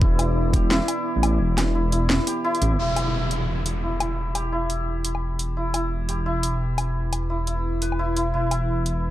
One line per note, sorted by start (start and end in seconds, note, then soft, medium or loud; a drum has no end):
0.00 0.80 E1 loud
0.00 2.78 B3 medium
0.00 2.79 E4 medium
0.00 0.19 E4 medium
0.00 0.53 G4 medium
0.00 2.81 D5 medium
0.00 kick loud
0.19 0.71 E4 medium
0.19 closed hi-hat medium
0.19 low woodblock medium
0.54 2.27 G4 medium
0.54 kick medium
0.54 closed hi-hat medium
0.71 1.75 E4 loud
0.71 snare loud
0.88 closed hi-hat medium
0.88 low woodblock soft
1.16 1.39 A1 medium
1.23 closed hi-hat medium
1.23 low woodblock medium
1.40 2.19 E1 loud
1.58 snare medium
1.58 closed hi-hat medium
1.58 low woodblock medium
1.75 1.92 E4 medium
1.92 2.44 E4 medium
1.92 closed hi-hat medium
2.10 snare loud
2.27 4.35 G4 medium
2.27 closed hi-hat medium
2.44 2.79 E4 loud
2.55 closed hi-hat soft
2.62 2.73 A1 loud
2.62 closed hi-hat medium
2.72 2.78 G1 loud
2.79 8.33 E1 medium
2.79 9.11 B3 medium
2.79 3.83 E4 medium
2.79 downlifter medium
2.96 closed hi-hat medium
2.96 low woodblock soft
3.01 9.11 E4 medium
3.31 closed hi-hat medium
3.66 closed hi-hat medium
3.83 4.00 E4 medium
3.96 9.11 B4 medium
4.00 4.52 E4 medium
4.00 closed hi-hat medium
4.00 low woodblock medium
4.35 6.08 G4 medium
4.35 closed hi-hat medium
4.35 low woodblock soft
4.52 5.56 E4 medium
4.70 closed hi-hat medium
5.05 closed hi-hat medium
5.15 low woodblock soft
5.39 closed hi-hat medium
5.57 5.74 E4 medium
5.74 6.26 E4 medium
5.74 closed hi-hat medium
5.74 low woodblock soft
6.09 9.11 G4 medium
6.09 closed hi-hat medium
6.26 7.29 E4 medium
6.43 closed hi-hat medium
6.78 closed hi-hat medium
6.78 low woodblock medium
7.13 closed hi-hat medium
7.13 low woodblock soft
7.30 7.47 E4 medium
7.47 7.99 E4 medium
7.47 closed hi-hat medium
7.82 9.11 B4 medium
7.82 closed hi-hat medium
7.92 low woodblock soft
7.99 8.16 E4 medium
8.16 8.33 E4 medium
8.16 closed hi-hat medium
8.34 9.11 E1 medium
8.34 9.11 E4 medium
8.51 closed hi-hat medium
8.51 low woodblock soft
8.86 closed hi-hat medium